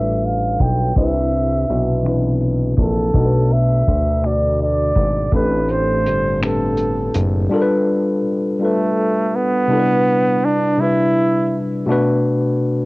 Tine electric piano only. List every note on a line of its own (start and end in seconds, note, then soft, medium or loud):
0.00 0.98 G3 medium
0.00 0.98 D4 medium
0.00 0.98 F4 medium
0.00 0.98 A4 medium
0.00 0.98 B4 medium
0.95 1.65 C3 medium
0.95 1.66 C4 medium
0.95 1.66 D4 medium
0.99 1.67 E4 medium
0.99 1.68 B4 medium
2.03 2.74 E3 medium
2.03 2.75 C4 medium
2.03 2.75 D4 medium
2.08 2.76 E4 medium
2.08 2.77 B4 medium
3.14 3.84 B2 medium
3.14 3.84 A3 medium
3.14 3.85 D4 medium
3.18 3.86 F#4 medium
3.18 3.24 A4 medium
3.26 3.90 B4 medium
4.22 4.92 B2 medium
4.22 4.93 A3 medium
4.22 4.94 D4 medium
4.26 4.95 F#4 medium
4.26 4.95 D5 medium
5.31 6.02 A2 medium
5.31 6.02 A3 medium
5.31 6.03 C4 medium
5.31 6.03 D4 medium
5.36 6.04 G4 medium
5.36 6.04 A4 medium
6.41 7.11 A2 medium
6.41 7.11 A3 medium
6.41 7.12 C4 medium
6.41 7.12 D4 medium
6.45 7.13 G4 medium
6.45 7.13 B4 medium
7.49 8.20 G3 loud
7.49 8.20 D4 medium
7.49 8.21 F4 medium
7.54 8.22 A4 medium
7.54 7.60 A#4 medium
7.62 8.26 B4 loud
8.59 9.29 G3 medium
8.59 9.30 D4 medium
8.59 9.30 F4 medium
8.63 9.31 A4 medium
8.63 9.32 B4 medium
9.68 10.38 C3 medium
9.68 10.39 G3 medium
9.68 10.39 D4 medium
9.72 10.40 E4 medium
9.72 9.78 A4 medium
9.80 10.44 B4 loud
10.78 11.47 C3 medium
10.78 11.48 G3 medium
10.78 11.49 D4 medium
10.82 11.50 E4 medium
10.82 11.50 B4 medium
11.86 12.56 B2 loud
11.86 12.57 A3 loud
11.86 12.58 D4 loud
11.90 12.58 F#4 loud
11.90 12.59 B4 loud